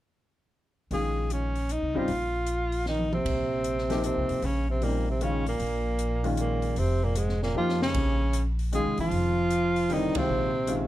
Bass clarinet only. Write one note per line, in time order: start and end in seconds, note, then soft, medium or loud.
2.86 3.10 D#3 medium
3.11 3.99 C3 medium
4.04 4.45 C3 medium
4.43 4.68 C#3 medium
4.69 4.85 C3 medium
4.83 5.08 A#2 medium
5.09 5.24 C3 medium
5.22 5.47 C#3 medium
5.47 6.35 A#2 medium
6.38 6.79 A#2 medium
6.78 7.05 C3 medium
7.03 7.18 A#2 medium
7.17 7.42 G#2 medium
7.42 7.55 A#2 medium
7.57 7.80 F3 medium
7.83 8.46 C#3 medium
8.74 8.97 G#3 medium
9.00 9.94 F3 medium
9.92 10.19 D#3 medium
10.17 10.87 C3 medium